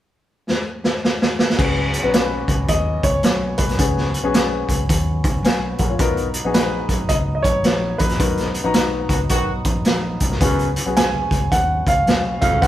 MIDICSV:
0, 0, Header, 1, 8, 480
1, 0, Start_track
1, 0, Tempo, 551471
1, 1383, Time_signature, 4, 2, 24, 8
1, 11031, End_track
2, 0, Start_track
2, 0, Title_t, "Grand piano"
2, 0, Program_c, 0, 0
2, 1865, Note_on_c, 0, 71, 70
2, 2340, Note_on_c, 0, 75, 91
2, 2358, Note_off_c, 0, 71, 0
2, 2643, Note_on_c, 0, 73, 86
2, 2655, Note_off_c, 0, 75, 0
2, 3091, Note_off_c, 0, 73, 0
2, 3114, Note_on_c, 0, 71, 70
2, 4046, Note_off_c, 0, 71, 0
2, 5695, Note_on_c, 0, 71, 77
2, 6169, Note_on_c, 0, 75, 99
2, 6193, Note_off_c, 0, 71, 0
2, 6221, Note_off_c, 0, 75, 0
2, 6396, Note_on_c, 0, 75, 66
2, 6463, Note_on_c, 0, 73, 91
2, 6480, Note_off_c, 0, 75, 0
2, 6920, Note_off_c, 0, 73, 0
2, 6949, Note_on_c, 0, 71, 79
2, 7883, Note_off_c, 0, 71, 0
2, 9545, Note_on_c, 0, 80, 87
2, 10024, Note_on_c, 0, 78, 90
2, 10038, Note_off_c, 0, 80, 0
2, 10306, Note_off_c, 0, 78, 0
2, 10341, Note_on_c, 0, 77, 82
2, 10781, Note_off_c, 0, 77, 0
2, 10805, Note_on_c, 0, 77, 87
2, 10983, Note_on_c, 0, 78, 92
2, 10987, Note_off_c, 0, 77, 0
2, 11031, Note_off_c, 0, 78, 0
2, 11031, End_track
3, 0, Start_track
3, 0, Title_t, "Upright piano"
3, 0, Program_c, 1, 0
3, 1369, Note_on_c, 1, 59, 74
3, 1375, Note_on_c, 1, 61, 67
3, 1377, Note_on_c, 1, 66, 69
3, 1382, Note_on_c, 1, 68, 78
3, 1609, Note_off_c, 1, 59, 0
3, 1611, Note_off_c, 1, 61, 0
3, 1613, Note_off_c, 1, 66, 0
3, 1615, Note_off_c, 1, 68, 0
3, 1766, Note_on_c, 1, 61, 60
3, 1767, Note_on_c, 1, 59, 71
3, 1770, Note_on_c, 1, 66, 67
3, 1778, Note_on_c, 1, 71, 74
3, 2258, Note_off_c, 1, 59, 0
3, 2258, Note_off_c, 1, 61, 0
3, 2260, Note_off_c, 1, 66, 0
3, 2263, Note_off_c, 1, 71, 0
3, 3201, Note_on_c, 1, 66, 37
3, 3217, Note_on_c, 1, 70, 47
3, 3253, Note_off_c, 1, 66, 0
3, 3261, Note_off_c, 1, 70, 0
3, 3295, Note_on_c, 1, 59, 65
3, 3300, Note_on_c, 1, 61, 63
3, 3302, Note_on_c, 1, 66, 59
3, 3308, Note_on_c, 1, 68, 69
3, 3531, Note_off_c, 1, 59, 0
3, 3534, Note_off_c, 1, 61, 0
3, 3535, Note_off_c, 1, 66, 0
3, 3538, Note_off_c, 1, 68, 0
3, 3685, Note_on_c, 1, 59, 83
3, 3686, Note_on_c, 1, 61, 75
3, 3695, Note_on_c, 1, 66, 76
3, 3696, Note_on_c, 1, 68, 93
3, 4177, Note_off_c, 1, 59, 0
3, 4178, Note_off_c, 1, 61, 0
3, 4182, Note_off_c, 1, 66, 0
3, 4183, Note_off_c, 1, 68, 0
3, 4738, Note_on_c, 1, 80, 62
3, 4743, Note_on_c, 1, 71, 52
3, 5029, Note_off_c, 1, 80, 0
3, 5032, Note_off_c, 1, 71, 0
3, 5041, Note_on_c, 1, 78, 63
3, 5050, Note_on_c, 1, 70, 52
3, 5127, Note_off_c, 1, 78, 0
3, 5130, Note_on_c, 1, 73, 56
3, 5132, Note_off_c, 1, 70, 0
3, 5141, Note_on_c, 1, 65, 50
3, 5214, Note_on_c, 1, 59, 77
3, 5215, Note_on_c, 1, 63, 68
3, 5220, Note_on_c, 1, 66, 68
3, 5227, Note_on_c, 1, 70, 95
3, 5360, Note_off_c, 1, 73, 0
3, 5366, Note_off_c, 1, 65, 0
3, 5451, Note_off_c, 1, 59, 0
3, 5452, Note_off_c, 1, 63, 0
3, 5454, Note_off_c, 1, 66, 0
3, 5457, Note_off_c, 1, 70, 0
3, 5609, Note_on_c, 1, 59, 74
3, 5613, Note_on_c, 1, 63, 62
3, 5618, Note_on_c, 1, 66, 66
3, 5625, Note_on_c, 1, 68, 84
3, 6099, Note_off_c, 1, 59, 0
3, 6101, Note_off_c, 1, 63, 0
3, 6104, Note_off_c, 1, 66, 0
3, 6107, Note_off_c, 1, 68, 0
3, 7046, Note_on_c, 1, 66, 36
3, 7060, Note_on_c, 1, 68, 44
3, 7095, Note_off_c, 1, 66, 0
3, 7102, Note_off_c, 1, 68, 0
3, 7130, Note_on_c, 1, 59, 65
3, 7135, Note_on_c, 1, 63, 60
3, 7141, Note_on_c, 1, 66, 60
3, 7146, Note_on_c, 1, 70, 76
3, 7369, Note_off_c, 1, 59, 0
3, 7372, Note_off_c, 1, 63, 0
3, 7375, Note_off_c, 1, 66, 0
3, 7377, Note_off_c, 1, 70, 0
3, 7518, Note_on_c, 1, 59, 83
3, 7525, Note_on_c, 1, 63, 82
3, 7530, Note_on_c, 1, 66, 72
3, 7531, Note_on_c, 1, 82, 92
3, 8013, Note_off_c, 1, 59, 0
3, 8017, Note_off_c, 1, 63, 0
3, 8020, Note_off_c, 1, 66, 0
3, 8020, Note_off_c, 1, 82, 0
3, 8962, Note_on_c, 1, 66, 48
3, 8978, Note_on_c, 1, 70, 52
3, 9013, Note_off_c, 1, 66, 0
3, 9022, Note_off_c, 1, 70, 0
3, 9057, Note_on_c, 1, 59, 77
3, 9060, Note_on_c, 1, 61, 72
3, 9066, Note_on_c, 1, 66, 72
3, 9071, Note_on_c, 1, 68, 81
3, 9292, Note_off_c, 1, 59, 0
3, 9294, Note_off_c, 1, 61, 0
3, 9297, Note_off_c, 1, 66, 0
3, 9300, Note_off_c, 1, 68, 0
3, 9452, Note_on_c, 1, 59, 70
3, 9455, Note_on_c, 1, 61, 57
3, 9460, Note_on_c, 1, 66, 66
3, 9463, Note_on_c, 1, 68, 79
3, 9941, Note_off_c, 1, 59, 0
3, 9942, Note_off_c, 1, 61, 0
3, 9944, Note_off_c, 1, 66, 0
3, 9946, Note_off_c, 1, 68, 0
3, 10893, Note_on_c, 1, 66, 45
3, 10907, Note_on_c, 1, 68, 50
3, 10939, Note_off_c, 1, 66, 0
3, 10946, Note_off_c, 1, 68, 0
3, 10979, Note_on_c, 1, 59, 70
3, 10982, Note_on_c, 1, 61, 65
3, 10985, Note_on_c, 1, 66, 56
3, 10994, Note_on_c, 1, 68, 69
3, 11031, Note_off_c, 1, 59, 0
3, 11031, Note_off_c, 1, 61, 0
3, 11031, Note_off_c, 1, 66, 0
3, 11031, Note_off_c, 1, 68, 0
3, 11031, End_track
4, 0, Start_track
4, 0, Title_t, "Horn section"
4, 0, Program_c, 2, 61
4, 7911, Note_on_c, 2, 66, 80
4, 7914, Note_on_c, 2, 51, 68
4, 7918, Note_on_c, 2, 59, 75
4, 7993, Note_off_c, 2, 66, 0
4, 7994, Note_off_c, 2, 51, 0
4, 7996, Note_off_c, 2, 59, 0
4, 8090, Note_on_c, 2, 51, 78
4, 8093, Note_on_c, 2, 66, 88
4, 8094, Note_on_c, 2, 59, 81
4, 8288, Note_off_c, 2, 51, 0
4, 8290, Note_off_c, 2, 66, 0
4, 8291, Note_off_c, 2, 59, 0
4, 11031, End_track
5, 0, Start_track
5, 0, Title_t, "Tonewheel organ"
5, 0, Program_c, 3, 16
5, 1373, Note_on_c, 3, 59, 55
5, 1373, Note_on_c, 3, 61, 75
5, 1376, Note_on_c, 3, 54, 58
5, 5183, Note_off_c, 3, 61, 0
5, 5184, Note_off_c, 3, 54, 0
5, 5210, Note_on_c, 3, 63, 69
5, 5213, Note_on_c, 3, 54, 64
5, 9022, Note_off_c, 3, 63, 0
5, 9023, Note_off_c, 3, 54, 0
5, 9023, Note_off_c, 3, 59, 0
5, 9059, Note_on_c, 3, 59, 60
5, 9062, Note_on_c, 3, 54, 61
5, 9063, Note_on_c, 3, 61, 67
5, 11031, Note_off_c, 3, 54, 0
5, 11031, Note_off_c, 3, 59, 0
5, 11031, Note_off_c, 3, 61, 0
5, 11031, End_track
6, 0, Start_track
6, 0, Title_t, "Baritone saxophone"
6, 0, Program_c, 4, 67
6, 9053, Note_on_c, 4, 42, 65
6, 9300, Note_off_c, 4, 42, 0
6, 10803, Note_on_c, 4, 41, 75
6, 10945, Note_off_c, 4, 41, 0
6, 10979, Note_on_c, 4, 39, 75
6, 11031, Note_off_c, 4, 39, 0
6, 11031, End_track
7, 0, Start_track
7, 0, Title_t, "Picked electric bass"
7, 0, Program_c, 5, 34
7, 1382, Note_on_c, 5, 37, 90
7, 1709, Note_off_c, 5, 37, 0
7, 1776, Note_on_c, 5, 35, 82
7, 2102, Note_off_c, 5, 35, 0
7, 2159, Note_on_c, 5, 37, 90
7, 2308, Note_off_c, 5, 37, 0
7, 2337, Note_on_c, 5, 39, 90
7, 2593, Note_off_c, 5, 39, 0
7, 2641, Note_on_c, 5, 37, 82
7, 2790, Note_off_c, 5, 37, 0
7, 2818, Note_on_c, 5, 35, 93
7, 3073, Note_off_c, 5, 35, 0
7, 3124, Note_on_c, 5, 36, 87
7, 3271, Note_off_c, 5, 36, 0
7, 3297, Note_on_c, 5, 37, 86
7, 3626, Note_off_c, 5, 37, 0
7, 3686, Note_on_c, 5, 35, 79
7, 4016, Note_off_c, 5, 35, 0
7, 4083, Note_on_c, 5, 37, 84
7, 4231, Note_off_c, 5, 37, 0
7, 4259, Note_on_c, 5, 39, 89
7, 4561, Note_off_c, 5, 39, 0
7, 4561, Note_on_c, 5, 37, 84
7, 4710, Note_off_c, 5, 37, 0
7, 4725, Note_on_c, 5, 35, 93
7, 4985, Note_off_c, 5, 35, 0
7, 5045, Note_on_c, 5, 34, 84
7, 5192, Note_off_c, 5, 34, 0
7, 5217, Note_on_c, 5, 35, 98
7, 5545, Note_off_c, 5, 35, 0
7, 5613, Note_on_c, 5, 34, 77
7, 5940, Note_off_c, 5, 34, 0
7, 5996, Note_on_c, 5, 35, 89
7, 6147, Note_off_c, 5, 35, 0
7, 6176, Note_on_c, 5, 37, 85
7, 6432, Note_off_c, 5, 37, 0
7, 6479, Note_on_c, 5, 35, 81
7, 6629, Note_off_c, 5, 35, 0
7, 6651, Note_on_c, 5, 34, 90
7, 6909, Note_off_c, 5, 34, 0
7, 6961, Note_on_c, 5, 34, 80
7, 7110, Note_off_c, 5, 34, 0
7, 7135, Note_on_c, 5, 35, 85
7, 7464, Note_off_c, 5, 35, 0
7, 7524, Note_on_c, 5, 34, 82
7, 7602, Note_off_c, 5, 34, 0
7, 7613, Note_on_c, 5, 35, 85
7, 7870, Note_off_c, 5, 35, 0
7, 7913, Note_on_c, 5, 37, 83
7, 8065, Note_off_c, 5, 37, 0
7, 8096, Note_on_c, 5, 35, 93
7, 8352, Note_off_c, 5, 35, 0
7, 8397, Note_on_c, 5, 34, 86
7, 8547, Note_off_c, 5, 34, 0
7, 8584, Note_on_c, 5, 34, 92
7, 8837, Note_off_c, 5, 34, 0
7, 8886, Note_on_c, 5, 36, 83
7, 9033, Note_off_c, 5, 36, 0
7, 9058, Note_on_c, 5, 37, 84
7, 9386, Note_off_c, 5, 37, 0
7, 9456, Note_on_c, 5, 35, 78
7, 9782, Note_off_c, 5, 35, 0
7, 9844, Note_on_c, 5, 37, 84
7, 9992, Note_off_c, 5, 37, 0
7, 10024, Note_on_c, 5, 39, 87
7, 10277, Note_off_c, 5, 39, 0
7, 10329, Note_on_c, 5, 37, 86
7, 10475, Note_off_c, 5, 37, 0
7, 10499, Note_on_c, 5, 35, 85
7, 10754, Note_off_c, 5, 35, 0
7, 10813, Note_on_c, 5, 36, 96
7, 10957, Note_off_c, 5, 36, 0
7, 10988, Note_on_c, 5, 37, 97
7, 11031, Note_off_c, 5, 37, 0
7, 11031, End_track
8, 0, Start_track
8, 0, Title_t, "Drums"
8, 431, Note_on_c, 9, 38, 53
8, 518, Note_off_c, 9, 38, 0
8, 733, Note_on_c, 9, 38, 65
8, 820, Note_off_c, 9, 38, 0
8, 910, Note_on_c, 9, 38, 78
8, 997, Note_off_c, 9, 38, 0
8, 1062, Note_on_c, 9, 38, 80
8, 1149, Note_off_c, 9, 38, 0
8, 1210, Note_on_c, 9, 38, 96
8, 1297, Note_off_c, 9, 38, 0
8, 1304, Note_on_c, 9, 38, 78
8, 1382, Note_on_c, 9, 36, 95
8, 1384, Note_on_c, 9, 49, 81
8, 1391, Note_off_c, 9, 38, 0
8, 1469, Note_off_c, 9, 36, 0
8, 1471, Note_off_c, 9, 49, 0
8, 1684, Note_on_c, 9, 42, 66
8, 1771, Note_off_c, 9, 42, 0
8, 1858, Note_on_c, 9, 42, 92
8, 1863, Note_on_c, 9, 38, 98
8, 1945, Note_off_c, 9, 42, 0
8, 1950, Note_off_c, 9, 38, 0
8, 2159, Note_on_c, 9, 36, 76
8, 2162, Note_on_c, 9, 42, 72
8, 2246, Note_off_c, 9, 36, 0
8, 2249, Note_off_c, 9, 42, 0
8, 2334, Note_on_c, 9, 42, 86
8, 2338, Note_on_c, 9, 36, 86
8, 2421, Note_off_c, 9, 42, 0
8, 2425, Note_off_c, 9, 36, 0
8, 2641, Note_on_c, 9, 36, 85
8, 2641, Note_on_c, 9, 42, 63
8, 2728, Note_off_c, 9, 36, 0
8, 2728, Note_off_c, 9, 42, 0
8, 2810, Note_on_c, 9, 42, 68
8, 2821, Note_on_c, 9, 38, 97
8, 2897, Note_off_c, 9, 42, 0
8, 2908, Note_off_c, 9, 38, 0
8, 3112, Note_on_c, 9, 42, 72
8, 3123, Note_on_c, 9, 36, 89
8, 3199, Note_off_c, 9, 42, 0
8, 3209, Note_on_c, 9, 42, 45
8, 3210, Note_off_c, 9, 36, 0
8, 3213, Note_on_c, 9, 38, 25
8, 3296, Note_off_c, 9, 42, 0
8, 3297, Note_on_c, 9, 42, 86
8, 3298, Note_on_c, 9, 36, 101
8, 3300, Note_off_c, 9, 38, 0
8, 3384, Note_off_c, 9, 42, 0
8, 3385, Note_off_c, 9, 36, 0
8, 3458, Note_on_c, 9, 38, 32
8, 3545, Note_off_c, 9, 38, 0
8, 3603, Note_on_c, 9, 42, 58
8, 3690, Note_off_c, 9, 42, 0
8, 3778, Note_on_c, 9, 42, 86
8, 3783, Note_on_c, 9, 38, 99
8, 3865, Note_off_c, 9, 42, 0
8, 3870, Note_off_c, 9, 38, 0
8, 4079, Note_on_c, 9, 36, 68
8, 4083, Note_on_c, 9, 42, 67
8, 4166, Note_off_c, 9, 36, 0
8, 4171, Note_off_c, 9, 42, 0
8, 4259, Note_on_c, 9, 36, 92
8, 4259, Note_on_c, 9, 42, 87
8, 4346, Note_off_c, 9, 36, 0
8, 4346, Note_off_c, 9, 42, 0
8, 4562, Note_on_c, 9, 36, 95
8, 4563, Note_on_c, 9, 42, 62
8, 4649, Note_off_c, 9, 36, 0
8, 4650, Note_off_c, 9, 42, 0
8, 4738, Note_on_c, 9, 42, 72
8, 4749, Note_on_c, 9, 38, 101
8, 4825, Note_off_c, 9, 42, 0
8, 4836, Note_off_c, 9, 38, 0
8, 5034, Note_on_c, 9, 42, 70
8, 5044, Note_on_c, 9, 36, 84
8, 5121, Note_off_c, 9, 42, 0
8, 5131, Note_off_c, 9, 36, 0
8, 5213, Note_on_c, 9, 42, 89
8, 5217, Note_on_c, 9, 36, 101
8, 5300, Note_off_c, 9, 42, 0
8, 5304, Note_off_c, 9, 36, 0
8, 5370, Note_on_c, 9, 42, 39
8, 5457, Note_off_c, 9, 42, 0
8, 5515, Note_on_c, 9, 42, 67
8, 5602, Note_off_c, 9, 42, 0
8, 5692, Note_on_c, 9, 42, 92
8, 5697, Note_on_c, 9, 38, 98
8, 5779, Note_off_c, 9, 42, 0
8, 5784, Note_off_c, 9, 38, 0
8, 5996, Note_on_c, 9, 36, 75
8, 5996, Note_on_c, 9, 42, 76
8, 6083, Note_off_c, 9, 36, 0
8, 6083, Note_off_c, 9, 42, 0
8, 6169, Note_on_c, 9, 42, 80
8, 6175, Note_on_c, 9, 36, 87
8, 6256, Note_off_c, 9, 42, 0
8, 6262, Note_off_c, 9, 36, 0
8, 6479, Note_on_c, 9, 36, 83
8, 6480, Note_on_c, 9, 42, 64
8, 6566, Note_off_c, 9, 36, 0
8, 6567, Note_off_c, 9, 42, 0
8, 6648, Note_on_c, 9, 42, 71
8, 6659, Note_on_c, 9, 38, 88
8, 6735, Note_off_c, 9, 42, 0
8, 6746, Note_off_c, 9, 38, 0
8, 6956, Note_on_c, 9, 42, 74
8, 6963, Note_on_c, 9, 36, 93
8, 7043, Note_off_c, 9, 42, 0
8, 7043, Note_on_c, 9, 42, 47
8, 7047, Note_on_c, 9, 38, 28
8, 7050, Note_off_c, 9, 36, 0
8, 7130, Note_off_c, 9, 42, 0
8, 7134, Note_off_c, 9, 38, 0
8, 7134, Note_on_c, 9, 42, 98
8, 7135, Note_on_c, 9, 36, 100
8, 7221, Note_off_c, 9, 42, 0
8, 7222, Note_off_c, 9, 36, 0
8, 7289, Note_on_c, 9, 42, 38
8, 7298, Note_on_c, 9, 38, 30
8, 7376, Note_off_c, 9, 42, 0
8, 7385, Note_off_c, 9, 38, 0
8, 7435, Note_on_c, 9, 42, 61
8, 7522, Note_off_c, 9, 42, 0
8, 7605, Note_on_c, 9, 42, 90
8, 7609, Note_on_c, 9, 38, 98
8, 7692, Note_off_c, 9, 42, 0
8, 7697, Note_off_c, 9, 38, 0
8, 7914, Note_on_c, 9, 36, 76
8, 7914, Note_on_c, 9, 42, 71
8, 8001, Note_off_c, 9, 36, 0
8, 8001, Note_off_c, 9, 42, 0
8, 8088, Note_on_c, 9, 42, 85
8, 8094, Note_on_c, 9, 36, 87
8, 8175, Note_off_c, 9, 42, 0
8, 8181, Note_off_c, 9, 36, 0
8, 8395, Note_on_c, 9, 42, 67
8, 8398, Note_on_c, 9, 36, 86
8, 8482, Note_off_c, 9, 42, 0
8, 8485, Note_off_c, 9, 36, 0
8, 8570, Note_on_c, 9, 42, 67
8, 8581, Note_on_c, 9, 38, 91
8, 8657, Note_off_c, 9, 42, 0
8, 8668, Note_off_c, 9, 38, 0
8, 8879, Note_on_c, 9, 42, 70
8, 8885, Note_on_c, 9, 36, 80
8, 8966, Note_off_c, 9, 42, 0
8, 8972, Note_off_c, 9, 36, 0
8, 8975, Note_on_c, 9, 38, 27
8, 9059, Note_on_c, 9, 36, 103
8, 9059, Note_on_c, 9, 42, 95
8, 9060, Note_on_c, 9, 64, 74
8, 9062, Note_off_c, 9, 38, 0
8, 9146, Note_off_c, 9, 36, 0
8, 9146, Note_off_c, 9, 42, 0
8, 9147, Note_off_c, 9, 64, 0
8, 9217, Note_on_c, 9, 42, 41
8, 9304, Note_off_c, 9, 42, 0
8, 9365, Note_on_c, 9, 42, 71
8, 9452, Note_off_c, 9, 42, 0
8, 9543, Note_on_c, 9, 42, 90
8, 9546, Note_on_c, 9, 63, 43
8, 9548, Note_on_c, 9, 38, 106
8, 9630, Note_off_c, 9, 42, 0
8, 9633, Note_off_c, 9, 63, 0
8, 9635, Note_off_c, 9, 38, 0
8, 9693, Note_on_c, 9, 63, 64
8, 9780, Note_off_c, 9, 63, 0
8, 9844, Note_on_c, 9, 36, 85
8, 9844, Note_on_c, 9, 62, 36
8, 9853, Note_on_c, 9, 42, 71
8, 9931, Note_off_c, 9, 36, 0
8, 9931, Note_off_c, 9, 62, 0
8, 9940, Note_off_c, 9, 42, 0
8, 10025, Note_on_c, 9, 36, 94
8, 10027, Note_on_c, 9, 42, 86
8, 10027, Note_on_c, 9, 62, 29
8, 10112, Note_off_c, 9, 36, 0
8, 10114, Note_off_c, 9, 42, 0
8, 10114, Note_off_c, 9, 62, 0
8, 10328, Note_on_c, 9, 36, 85
8, 10331, Note_on_c, 9, 42, 69
8, 10415, Note_off_c, 9, 36, 0
8, 10418, Note_off_c, 9, 42, 0
8, 10506, Note_on_c, 9, 42, 65
8, 10513, Note_on_c, 9, 62, 32
8, 10513, Note_on_c, 9, 63, 70
8, 10517, Note_on_c, 9, 38, 88
8, 10593, Note_off_c, 9, 42, 0
8, 10600, Note_off_c, 9, 62, 0
8, 10600, Note_off_c, 9, 63, 0
8, 10604, Note_off_c, 9, 38, 0
8, 10805, Note_on_c, 9, 42, 73
8, 10812, Note_on_c, 9, 36, 84
8, 10812, Note_on_c, 9, 62, 26
8, 10812, Note_on_c, 9, 63, 58
8, 10812, Note_on_c, 9, 64, 52
8, 10892, Note_off_c, 9, 42, 0
8, 10898, Note_off_c, 9, 63, 0
8, 10898, Note_on_c, 9, 63, 62
8, 10899, Note_off_c, 9, 36, 0
8, 10899, Note_off_c, 9, 62, 0
8, 10899, Note_off_c, 9, 64, 0
8, 10985, Note_off_c, 9, 63, 0
8, 10987, Note_on_c, 9, 36, 100
8, 10987, Note_on_c, 9, 62, 28
8, 10987, Note_on_c, 9, 64, 64
8, 10991, Note_on_c, 9, 42, 86
8, 11031, Note_off_c, 9, 36, 0
8, 11031, Note_off_c, 9, 42, 0
8, 11031, Note_off_c, 9, 62, 0
8, 11031, Note_off_c, 9, 64, 0
8, 11031, End_track
0, 0, End_of_file